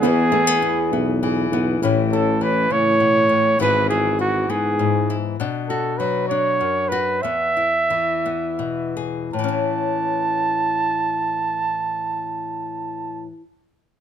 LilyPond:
<<
  \new Staff \with { instrumentName = "Flugelhorn" } { \time 6/8 \key a \major \tempo 4. = 66 gis'2 r4 | r8 a'8 b'8 cis''4. | b'8 gis'8 fis'8 gis'4 r8 | r8 a'8 b'8 cis''4 b'8 |
e''2~ e''8 r8 | a''2.~ | a''2. | }
  \new Staff \with { instrumentName = "Upright piano" } { \time 6/8 \key a \major b8 b8 gis'8 e'8 gis'8 e'8 | r2. | r2. | r2. |
r2. | r2. | r2. | }
  \new Staff \with { instrumentName = "Nylon-string guitar" } { \time 6/8 \key a \major << { <e b e'>8 a16 b16 e'8 b4 b8 | <e cis' e'>8 e'2~ e'8 | <e b e' gis'>8 e'4 b4 e'8 | d'8 fis'4 d'4 fis'8 |
b8 e'4 b4 gis'8 | <e cis' e'>2.~ | <e cis' e'>2. | } \\ { e,2 e4 | a,4 e8 cis8 b,8 a,8 | gis,4 e4 gis,4 | b,4 fis4 fis,4 |
e,4 e4 b,4 | a,2.~ | a,2. | } >> }
  \new Staff \with { instrumentName = "Tuba" } { \clef bass \time 6/8 \key a \major e,4 r8 b,,4 b,,8 | a,,4. a,4. | gis,,4. gis,4. | r2. |
r2. | r2. | r2. | }
>>